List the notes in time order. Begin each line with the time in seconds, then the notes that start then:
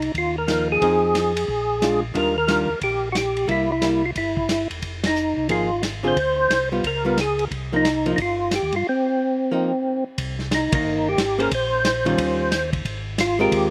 Already playing: C2 D#4
0.02 ride
0.14 D#2 F4, kick, ride
0.38 A#4
0.47 F3 A#3 D#4, snare, hi-hat pedal, ride
0.72 G#4
0.81 F2 F3 C4 D#4 G#4, kick, ride
1.15 snare, hi-hat pedal, ride
1.37 ride
1.48 A#1, kick
1.82 G#3 D4 F4, snare, hi-hat pedal, ride
2.14 D#2 D#3 G3 D4 F4 A#4, kick, ride
2.38 A#4
2.48 D#3 G3 D4 F4, snare, hi-hat pedal, ride
2.69 D#2
2.81 A#1 G4, kick, ride
3.12 F#4, snare, hi-hat pedal, ride
3.18 G4
3.37 ride
3.47 C2 G3 A#3 E4, kick, ride
3.51 E4
3.72 E4
3.82 G3 A#3 E4, snare, hi-hat pedal, ride
4.06 F4
4.15 G1 E4, kick, ride
4.37 kick
4.49 snare, hi-hat pedal, ride
4.70 E1, ride
4.82 F1, kick, ride
5.04 D#4, snare, ride
5.16 hi-hat pedal
5.37 C2
5.49 G#1 F3 A#3 D#4 F4 G#4, kick, ride
5.83 snare, hi-hat pedal, ride
6.03 D3 C4 F4 G#4
6.08 C5
6.16 D2, kick, ride
6.49 C2, snare, hi-hat pedal, ride
6.72 G3 B3 F4
6.84 C#2 A#4, kick, ride
7.05 G3 B3 F4
7.17 G#4, snare, hi-hat pedal, ride
7.39 ride
7.51 C2, kick, ride
7.73 F3 A#3 D#4
7.85 snare, hi-hat pedal, ride
8.06 F3 A#3 D#4, ride
8.16 G1 D#4, kick, ride
8.22 F4
8.51 snare, hi-hat pedal, ride
8.55 G4
8.62 D#2
8.72 G2 F4, ride
8.89 C4
9.51 F3 A#3 D#4
10.18 C2, kick, ride
10.39 snare
10.51 D#4, snare, hi-hat pedal, ride
10.72 C2 D#3 A#3 D#4, kick, ride
10.84 G1
11.08 G4
11.17 G#1, snare, hi-hat pedal, ride
11.38 A#3 C#4 G#4 A#4 C5, ride
11.51 A#1 C5, kick, ride
11.85 snare, hi-hat pedal, ride
12.05 D#3 G3 C#4 F4, ride
12.18 D#2, kick, ride
12.52 snare, hi-hat pedal, ride
12.73 kick, ride
12.85 G#1, kick, ride
13.18 F4, snare, hi-hat pedal, ride
13.39 G#3 C4 F4 G4 A#4
13.51 D#2, kick, ride